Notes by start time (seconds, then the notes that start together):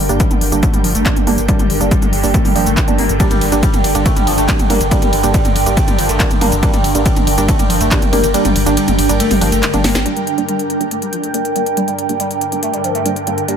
Already playing: G2 D3 D4 A#4 G5
0.09 G1 G3 A#3 D4, closed hi-hat, shaker
0.20 G3, kick, closed hi-hat, shaker
0.31 G1, closed hi-hat, mid tom, shaker
0.41 G1, open hi-hat
0.52 G1 G3 A#3 D4, closed hi-hat, shaker
0.63 A3, kick, closed hi-hat, shaker
0.73 G1 G3, closed hi-hat, mid tom, shaker
0.84 G1 F3, open hi-hat
0.95 G1 A3, closed hi-hat, shaker
1.06 G3 A#3 D4, kick, clap, closed hi-hat, shaker
1.16 G1, closed hi-hat, mid tom, shaker
1.27 G1 G3 A#3 D4, mid tom, open hi-hat
1.38 G1, closed hi-hat, shaker
1.48 G3 A#3 D4, kick, closed hi-hat, shaker
1.59 G1 G3, closed hi-hat, mid tom, shaker
1.70 G1, open hi-hat
1.81 G1 G3 A#3 D4, closed hi-hat, shaker
1.91 G3, kick, closed hi-hat, shaker
2.02 G1, closed hi-hat, mid tom, shaker
2.13 G1, open hi-hat
2.24 G1 G3 A#3 D4, open hi-hat, shaker
2.34 A3, kick, closed hi-hat, shaker
2.45 G1 G3, mid tom, open hi-hat, shaker
2.56 G1 F3 G3 A#3 D4, open hi-hat
2.66 G1 A3, closed hi-hat, shaker
2.77 kick, clap, closed hi-hat, shaker
2.88 G1 G3 A#3 D4, closed hi-hat, mid tom, shaker
2.98 G1 A#3, mid tom, open hi-hat
3.09 G1, closed hi-hat, shaker
3.20 G3 A#3 D4, kick, closed hi-hat, ride, shaker
3.31 G1 G3, closed hi-hat, mid tom, ride, shaker
3.41 G1, open hi-hat, ride
3.52 G1 G3 A#3 D4, closed hi-hat, ride, shaker
3.63 G3, kick, closed hi-hat, ride, shaker
3.74 G1, closed hi-hat, mid tom, ride, shaker
3.84 G1, open hi-hat, ride
3.95 G1 G3 A#3 D4, closed hi-hat, ride, shaker
4.06 A3, kick, closed hi-hat, ride, shaker
4.16 G1 G3, closed hi-hat, mid tom, ride, shaker
4.27 G1 F3, open hi-hat, ride
4.38 G1 A3, closed hi-hat, ride, shaker
4.49 G3 A#3 D4, kick, clap, closed hi-hat, ride, shaker
4.59 G1, closed hi-hat, mid tom, ride, shaker
4.70 G1 G3 A#3 D4, mid tom, open hi-hat, ride
4.81 G1, closed hi-hat, ride, shaker
4.91 G3 A#3 D4, kick, closed hi-hat, ride, shaker
5.02 G1 G3, closed hi-hat, mid tom, ride, shaker
5.13 G1, open hi-hat, ride
5.23 G1 G3 A#3 D4, closed hi-hat, ride, shaker
5.34 G3, kick, closed hi-hat, ride, shaker
5.45 G1, closed hi-hat, mid tom, ride, shaker
5.56 G1, open hi-hat, ride
5.66 G1 G3 A#3 D4, closed hi-hat, ride, shaker
5.77 A3, kick, closed hi-hat, ride, shaker
5.88 G1 G3, closed hi-hat, mid tom, ride, shaker
5.98 G1 F3, open hi-hat, ride
6.09 G1 A3, closed hi-hat, ride, shaker
6.20 G3 A#3 D4, kick, clap, closed hi-hat, ride, shaker
6.31 G1, closed hi-hat, mid tom, ride, shaker
6.41 G1 G3 A#3 D4, mid tom, open hi-hat, ride
6.52 G1, closed hi-hat, ride, shaker
6.63 G3 A#3 D4, kick, closed hi-hat, ride, shaker
6.73 G1 G3, closed hi-hat, mid tom, ride, shaker
6.84 G1, open hi-hat, ride
6.95 G1 G3 A#3 D4, closed hi-hat, ride, shaker
7.06 G3, kick, closed hi-hat, ride, shaker
7.16 G1, closed hi-hat, mid tom, ride, shaker
7.27 G1, open hi-hat, ride
7.38 G1 G3 A#3 D4, closed hi-hat, ride, shaker
7.48 A3, kick, closed hi-hat, ride, shaker
7.59 G1 G3, closed hi-hat, mid tom, ride, shaker
7.70 G1 F3, open hi-hat, ride
7.80 G1 A3, closed hi-hat, ride, shaker
7.91 G3 A#3 D4, kick, clap, closed hi-hat, ride, shaker
8.02 G1, closed hi-hat, mid tom, ride, shaker
8.13 G1 G3 A#3 D4, mid tom, open hi-hat, ride
8.23 G1, closed hi-hat, ride, shaker
8.34 G3 A#3 D4, closed hi-hat, ride, shaker
8.45 G1 G3, closed hi-hat, mid tom, ride, shaker
8.56 G1, open hi-hat, ride
8.66 G1 G3 A#3 D4, closed hi-hat, ride, shaker
8.77 G3, closed hi-hat, ride, shaker
8.88 G1, closed hi-hat, mid tom, ride, shaker
8.98 G1, open hi-hat, ride
9.09 G1 G3 A#3 D4, closed hi-hat, ride, shaker
9.20 A3, closed hi-hat, ride, shaker
9.31 G1 G3, mid tom, open hi-hat, ride, shaker
9.41 G1 F3 G3 A#3 D4, open hi-hat, ride
9.52 G1 A3, closed hi-hat, ride, shaker
9.63 clap, closed hi-hat, ride, shaker
9.73 G1 G3 A#3 D4, closed hi-hat, mid tom, ride, shaker
9.84 G1 A#3, snare, mid tom, open hi-hat, ride
9.95 G1, snare, closed hi-hat, ride, shaker
10.06 G2 D3 G3 A#3 D4, closed hi-hat
10.16 G3, closed hi-hat
10.27 closed hi-hat
10.38 G3 A#3 D4, closed hi-hat
10.48 G3, closed hi-hat
10.59 closed hi-hat
10.70 closed hi-hat
10.81 G3 A#3 D4, closed hi-hat
10.91 A3, closed hi-hat
11.02 G3, closed hi-hat
11.13 F3, closed hi-hat
11.24 A3, closed hi-hat
11.34 G3 A#3 D4, closed hi-hat
11.45 closed hi-hat
11.56 G3 A#3 D4, closed hi-hat
11.66 closed hi-hat
11.77 G3 A#3 D4, closed hi-hat
11.88 G3, closed hi-hat
11.99 closed hi-hat
12.09 G3 A#3 D4, closed hi-hat
12.20 G3, closed hi-hat
12.31 closed hi-hat
12.41 closed hi-hat
12.52 G3 A#3 D4, closed hi-hat
12.63 A3, closed hi-hat
12.74 G3, closed hi-hat
12.84 F3, closed hi-hat
12.95 A3, closed hi-hat
13.06 G3 A#3 D4, closed hi-hat
13.16 closed hi-hat
13.27 G3 A#3 D4, closed hi-hat
13.38 closed hi-hat
13.48 G3 A#3 D4, closed hi-hat